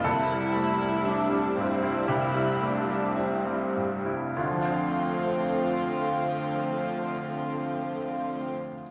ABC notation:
X:1
M:4/4
L:1/16
Q:1/4=53
K:Dm
V:1 name="Violin section"
E4 D2 C2 E2 D2 C2 z2 | [CF]16 |]
V:2 name="Viola section" clef=bass
[G,E]16 | [F,A,]16 |]
V:3 name="Grand piano"
A8 G4 z4 | [D,,D,F,Fcf]16 |]
V:4 name="Grand piano" clef=bass
C,, G, A, G, e G, G,, E C,, G, A, G, e G, G,, E | z16 |]
V:5 name="Cello section" clef=bass
C,16 | D,16 |]